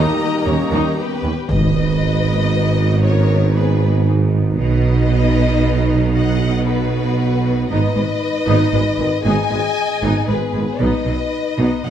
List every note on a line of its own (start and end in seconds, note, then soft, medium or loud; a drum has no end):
0.00 1.19 G3 medium
0.00 1.19 A#3 medium
0.00 1.24 A#3 medium
0.00 0.18 D#4 medium
0.00 0.46 D#4 medium
0.00 1.23 D#4 medium
0.00 1.24 G4 medium
0.00 1.26 G4 medium
0.00 0.95 A#4 medium
0.00 0.45 D#5 medium
0.00 1.23 D#5 medium
0.00 0.95 A#5 medium
0.00 0.50 D#6 medium
0.46 0.54 D#2 medium
0.46 0.56 D#2 medium
0.46 0.54 D#2 soft
0.46 0.54 C#4 medium
0.46 0.99 C#4 medium
0.46 0.97 C#5 medium
0.46 0.99 C#6 medium
0.72 0.82 D#2 medium
0.72 0.80 D#2 medium
0.72 0.96 D#4 medium
0.98 1.46 B3 medium
0.98 1.46 G4 medium
0.98 1.46 B4 medium
1.23 1.33 D#2 medium
1.23 1.32 D#2 soft
1.23 1.31 C#4 soft
1.49 4.56 G#1 medium
1.49 4.55 G#2 medium
1.49 2.23 G#2 medium
1.49 4.56 B3 medium
1.49 4.56 D#4 soft
1.49 3.04 B4 medium
1.49 3.01 D#5 medium
1.49 impact medium
1.53 2.86 D#4 medium
3.03 3.54 C#4 medium
3.03 3.55 A#4 medium
3.03 3.55 C#5 medium
3.57 4.07 B3 medium
3.57 4.07 G#4 medium
3.57 4.08 B4 medium
4.58 7.66 B1 medium
4.58 7.65 B2 medium
4.58 7.65 B3 soft
4.58 6.10 D#4 medium
4.58 7.66 D#4 medium
4.58 6.11 B4 medium
4.58 6.11 D#5 medium
6.15 6.66 F#4 medium
6.15 6.65 D#5 medium
6.15 6.66 F#5 medium
6.66 7.68 B3 medium
6.66 7.70 F#4 medium
6.66 7.68 B4 medium
7.69 7.80 G#1 medium
7.69 7.78 G#1 medium
7.69 7.77 G#2 medium
7.69 7.93 B3 medium
7.69 7.94 D#4 medium
7.69 9.25 D#4 medium
7.69 9.22 B4 medium
7.69 9.22 D#5 loud
7.94 8.06 G#1 soft
7.94 8.04 G#1 soft
7.94 8.03 G#2 soft
7.94 8.03 G#3 medium
7.94 8.02 B3 soft
8.47 8.57 G#1 medium
8.47 8.55 G#1 medium
8.47 8.55 G#2 medium
8.47 8.71 B3 medium
8.47 8.71 D#4 medium
8.73 8.83 G#1 soft
8.73 8.81 G#1 soft
8.73 8.81 G#2 soft
8.73 8.82 G#3 soft
8.73 8.82 B3 soft
8.98 9.07 G#1 soft
8.98 9.10 G#1 soft
8.98 9.06 G#2 soft
8.98 9.07 D#3 soft
8.98 9.07 G#3 soft
9.22 9.33 G#1 medium
9.22 9.33 G#2 medium
9.22 9.49 B3 medium
9.22 9.49 D#4 medium
9.22 10.25 G#4 medium
9.22 10.29 G#5 loud
9.26 9.36 G#1 medium
9.26 10.27 D#5 medium
9.50 9.59 G#1 soft
9.50 9.61 G#1 soft
9.50 9.58 G#2 soft
9.50 9.59 G#3 soft
9.50 9.60 B3 medium
10.02 10.13 G#1 medium
10.02 10.11 G#1 medium
10.02 10.10 G#2 medium
10.02 10.27 B3 medium
10.02 10.27 D#4 medium
10.27 10.37 G#1 soft
10.27 10.39 G#1 soft
10.27 10.36 G#2 soft
10.27 10.37 G#3 soft
10.27 10.78 B3 medium
10.27 10.37 B3 soft
10.27 10.81 G#4 medium
10.27 10.79 B4 medium
10.53 10.62 G#1 soft
10.53 10.66 G#1 soft
10.53 10.61 G#2 soft
10.53 10.63 D#3 soft
10.53 10.63 G#3 soft
10.80 10.88 B1 medium
10.80 10.91 B1 medium
10.80 10.88 B2 medium
10.80 11.05 B3 medium
10.80 11.67 D#4 medium
10.80 11.05 D#4 medium
10.80 11.82 B4 medium
10.80 11.84 D#5 medium
11.06 11.14 B1 soft
11.06 11.17 B1 soft
11.06 11.14 B2 soft
11.06 11.15 F#3 soft
11.06 11.15 B3 soft
11.58 11.66 B1 medium
11.58 11.68 B1 medium
11.58 11.66 B2 medium
11.58 11.82 B3 medium
11.58 11.82 D#4 medium
11.83 11.90 B1 soft
11.83 11.90 B2 soft
11.83 11.90 F#3 soft
11.83 11.90 B3 soft
11.83 11.90 F#4 soft
11.83 11.90 D#5 medium
11.83 11.90 F#5 medium